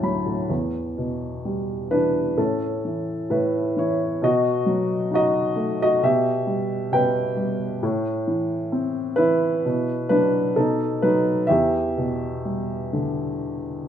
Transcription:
Already playing: D2 A2 D3 F#3 E5 F#5 G5 A5
0.03 F#3 B5
0.26 A2
0.50 E2
0.98 B2
1.45 G3
1.91 E3 D4 B4
2.38 A2 C#4 A4
2.85 E3
3.30 A2 E4 B4
3.76 E3 E4 C#5
4.22 B2 F#4 D#5
4.66 F#3
5.11 D#4 F#4
5.15 D#5
5.56 A3
5.82 F#4 D#5
6.03 B2 G4 E5
6.47 G3
6.92 B2 B4 G5
7.37 G3
7.83 A2
8.27 E3
8.72 C4
9.16 E3 E4 B4
9.65 B2
10.09 F#3 D4 B4
10.56 B2 D#4 A4
11.02 F#3 D#4 B4
11.47 E2 G4 E5
11.97 B2
12.45 G3
12.93 D3

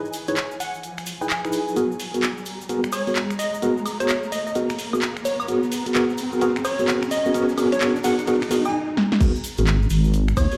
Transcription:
Already playing: G#5, riser
0.05 cabasa
0.13 open hi-hat, cabasa
0.28 D#4 E4 G#4 B4 C#5, closed hi-hat, cabasa
0.36 C#5, clap, closed hi-hat, cabasa
0.51 cabasa
0.60 F#5, open hi-hat, cabasa
0.74 cabasa
0.83 closed hi-hat, cabasa
0.98 finger snap, open hi-hat, cabasa
1.06 open hi-hat, cabasa
1.21 D#4 E4 G#4 B4 G#5, cabasa
1.30 clap, closed hi-hat, cabasa
1.45 D#4 E4 G#4 B4, finger snap, cabasa
1.52 open hi-hat, cabasa
1.68 cabasa
1.76 B3 F#4 G#4 A#4 A#5, closed hi-hat, cabasa
1.92 cabasa
2.00 open hi-hat, cabasa
2.14 B3 F#4 G#4 A#4, closed hi-hat, cabasa
2.23 clap, closed hi-hat, cabasa
2.38 cabasa
2.46 open hi-hat, cabasa
2.61 cabasa
2.69 B3 F#4 G#4 A#4, closed hi-hat, cabasa
2.84 finger snap, cabasa
2.92 C#5, open hi-hat, cabasa, high woodblock
3.07 B3 F#4 G#4 A#4, open hi-hat, cabasa
3.15 clap, closed hi-hat, cabasa
3.30 finger snap, cabasa
3.39 D#5, open hi-hat, cabasa
3.54 cabasa
3.62 B3 F#4 G#4 A#4, closed hi-hat, cabasa
3.77 cabasa
3.86 open hi-hat, cabasa, high woodblock
4.00 B3 F#4 G#4 A#4 C#5, closed hi-hat, cabasa
4.09 clap, closed hi-hat, cabasa
4.23 cabasa
4.32 D#5, open hi-hat, cabasa
4.47 D#5, cabasa
4.55 B3 F#4 G#4 A#4, closed hi-hat, cabasa
4.70 finger snap, open hi-hat, cabasa
4.79 open hi-hat, cabasa
4.93 B3 F#4 G#4 A#4, cabasa, high woodblock
5.02 clap, closed hi-hat, cabasa
5.17 finger snap, cabasa
5.25 C#5, open hi-hat, cabasa
5.40 C#5, cabasa, high woodblock
5.48 B3 F#4 G#4 A#4, closed hi-hat, cabasa
5.63 cabasa
5.72 open hi-hat, cabasa
5.86 B3 F#4 G#4 A#4, closed hi-hat, cabasa
5.95 B3 F#4 G#4 A#4, clap, closed hi-hat, cabasa
6.09 cabasa
6.18 open hi-hat, cabasa
6.32 B3 F#4 G#4 A#4, cabasa
6.41 B3 F#4 G#4 A#4, closed hi-hat, cabasa
6.56 finger snap, cabasa
6.65 C#5, open hi-hat, cabasa, high woodblock
6.79 B3 F#4 G#4 A#4, open hi-hat, cabasa
6.88 B3 F#4 G#4 A#4, clap, closed hi-hat, cabasa
7.03 finger snap, cabasa
7.11 D#5, open hi-hat, cabasa
7.25 B3 F#4 G#4 A#4, cabasa
7.34 B3 F#4 G#4 A#4, closed hi-hat, cabasa
7.49 cabasa
7.58 B3 F#4 G#4 A#4, open hi-hat, cabasa, high woodblock
7.72 C#5, finger snap, closed hi-hat, cabasa
7.81 B3 F#4 G#4 A#4 C#5, clap, closed hi-hat, cabasa
7.96 cabasa
8.04 B3 F#4 G#4 A#4 F#5, open hi-hat, cabasa
8.19 closed hi-hat, cabasa
8.27 B3 F#4 G#4 A#4, closed hi-hat, cabasa
8.42 finger snap, open hi-hat, cabasa
8.51 B3 F#4 G#4 A#4, open hi-hat, cabasa
8.65 G#5, cabasa, high woodblock
8.97 snare
9.12 snare
9.21 B3 F#4 G#4 A#4, kick, closed hi-hat, crash, cabasa
9.35 cabasa
9.44 open hi-hat, cabasa
9.57 G#1 B3 F#4 G#4 A#4, closed hi-hat, cabasa
9.67 clap, closed hi-hat, cabasa
9.82 cabasa
9.90 G#1, open hi-hat, cabasa
10.04 cabasa
10.14 closed hi-hat, cabasa
10.28 finger snap, cabasa
10.37 D#2 C#5, kick, open hi-hat, cabasa, high woodblock
10.52 B3 F#4 G#4 A#4, open hi-hat, cabasa

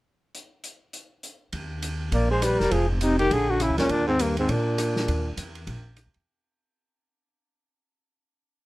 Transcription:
0.35 closed hi-hat
0.64 closed hi-hat
0.93 closed hi-hat
1.23 closed hi-hat
1.53 D#2, ride
1.82 hi-hat pedal, ride
2.12 A#1 A#3 D5, ride
2.31 G#3 C5
2.42 G3 B4, cross-stick, hi-hat pedal, ride
2.59 E1 G3 A#4, snare
2.71 F1 F3 G#4, ride
2.89 G#2 C4
3.01 C3 D#4, hi-hat pedal, ride
3.19 D#3 G4, ride
3.31 A#1 D3 G#4, ride
3.49 D3 F#4
3.60 C#3 E4, cross-stick, hi-hat pedal, ride
3.70 D2
3.77 C#2 A#2 C#4, snare, ride
3.89 D#2 A#2 D4, ride
4.07 G#2 C4
4.19 G2 A#3, hi-hat pedal, ride
4.37 G#2 C4, ride
4.49 A#2 D4, ride
4.78 cross-stick, hi-hat pedal, ride
4.96 snare
5.08 D#2, ride
5.37 E2, hi-hat pedal, ride
5.55 ride
5.67 A#1, ride
5.96 cross-stick, hi-hat pedal, ride
6.06 D#2
6.14 E2, ride

